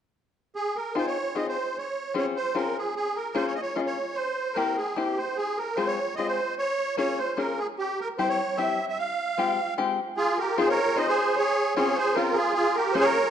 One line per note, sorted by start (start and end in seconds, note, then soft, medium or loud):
0.56 0.77 G#4 medium
0.76 0.96 A#4 medium
0.95 1.16 C4 soft
0.95 1.16 D#4 soft
0.95 1.17 F4 soft
0.95 1.17 G#4 medium
0.95 1.06 C5 medium
1.07 1.37 C#5 medium
1.35 1.57 C4 soft
1.35 1.57 D#4 soft
1.35 1.57 F4 soft
1.35 1.57 G#4 soft
1.35 1.47 D#5 medium
1.48 1.78 C5 medium
1.78 2.14 C#5 medium
2.14 2.36 C4 medium
2.14 2.36 C#4 medium
2.14 2.36 F4 soft
2.14 2.37 G#4 medium
2.14 2.26 C#5 medium
2.37 2.56 C5 medium
2.55 2.76 C4 medium
2.55 2.76 C#4 soft
2.55 2.76 F4 soft
2.55 2.77 G#4 medium
2.55 2.77 A#4 medium
2.78 2.94 G#4 medium
2.96 3.17 G#4 medium
3.16 3.36 A#4 medium
3.35 3.56 A#3 medium
3.35 3.56 C#4 medium
3.35 3.56 F4 soft
3.35 3.57 G#4 medium
3.35 3.46 C5 medium
3.47 3.54 C#5 medium
3.55 3.61 D#5 medium
3.62 3.77 C#5 medium
3.76 3.97 A#3 soft
3.76 3.97 C#4 soft
3.76 3.97 F4 soft
3.76 3.97 G#4 medium
3.76 3.81 D#5 medium
3.86 4.17 C#5 medium
4.15 4.57 C5 medium
4.53 4.77 A#3 medium
4.53 4.77 C4 soft
4.53 4.78 E4 soft
4.53 4.78 G4 medium
4.53 4.77 A#4 medium
4.77 4.97 G#4 medium
4.96 5.18 A#3 soft
4.96 5.18 C4 soft
4.96 5.18 E4 soft
4.96 5.18 G4 medium
4.96 5.18 G4 soft
5.17 5.37 C5 medium
5.37 5.59 G#4 medium
5.58 5.78 A#4 medium
5.76 5.98 G#3 medium
5.76 5.98 C4 soft
5.76 5.99 F4 soft
5.76 5.99 G#4 medium
5.76 5.88 C5 medium
5.87 6.15 C#5 medium
6.16 6.39 G#3 soft
6.16 6.39 C4 soft
6.16 6.39 F4 soft
6.16 6.39 G#4 soft
6.16 6.27 D#5 medium
6.27 6.55 C5 medium
6.58 6.96 C#5 medium
6.97 7.18 A#3 soft
6.97 7.19 C#4 soft
6.97 7.19 F4 soft
6.97 7.19 G#4 medium
6.97 7.19 C#5 medium
7.18 7.38 C5 medium
7.37 7.58 A#3 soft
7.37 7.58 C#4 soft
7.37 7.59 F4 soft
7.37 7.59 G#4 medium
7.37 7.59 A#4 medium
7.59 7.67 G#4 medium
7.79 8.00 G4 medium
8.01 8.09 A#4 medium
8.18 8.39 G3 soft
8.18 8.39 C4 soft
8.18 8.39 E4 soft
8.18 8.39 G4 medium
8.18 8.29 C5 medium
8.29 8.59 C#5 medium
8.57 8.78 G3 soft
8.57 8.79 C4 soft
8.57 8.79 E4 soft
8.57 8.79 G4 medium
8.57 8.86 E5 medium
8.89 8.98 E5 medium
8.99 9.74 F5 medium
9.38 9.59 G#3 medium
9.38 9.59 C4 soft
9.38 9.59 F4 soft
9.38 9.59 G4 medium
9.78 9.99 G#3 medium
9.78 9.99 C4 medium
9.78 9.99 F4 soft
9.78 9.99 G4 medium
10.17 10.37 F4 medium
10.17 10.39 G#4 medium
10.38 10.57 G4 medium
10.38 10.58 A#4 medium
10.58 10.79 C4 medium
10.58 10.79 D#4 medium
10.58 10.79 F4 medium
10.58 10.79 G#4 medium
10.58 10.68 G#4 medium
10.58 10.69 C5 medium
10.69 10.97 A#4 medium
10.69 10.99 C#5 medium
10.96 11.18 C4 soft
10.96 11.18 D#4 soft
10.96 11.18 F4 soft
10.96 11.18 G#4 medium
10.96 11.06 C5 medium
10.96 11.08 D#5 medium
11.08 11.36 G#4 medium
11.08 11.38 C5 medium
11.36 11.75 G#4 medium
11.36 11.74 C#5 medium
11.75 11.98 C4 medium
11.75 11.98 C#4 medium
11.75 11.98 F4 medium
11.75 11.98 G#4 medium
11.75 11.97 G#4 medium
11.75 11.98 C#5 medium
11.96 12.16 G#4 medium
11.96 12.16 C5 medium
12.15 12.37 C4 medium
12.15 12.37 C#4 medium
12.15 12.35 F4 medium
12.15 12.38 F4 medium
12.15 12.38 G#4 medium
12.15 12.37 A#4 medium
12.34 12.54 F4 medium
12.34 12.52 G#4 medium
12.54 12.76 F4 medium
12.54 12.76 G#4 medium
12.74 12.94 G4 medium
12.74 12.95 A#4 medium
12.92 13.16 A#3 medium
12.92 13.16 C#4 medium
12.92 13.16 F4 medium
12.92 13.16 G#4 medium
12.92 13.05 G#4 medium
12.92 13.04 C5 medium
13.01 13.30 A#4 medium
13.01 13.30 C#5 loud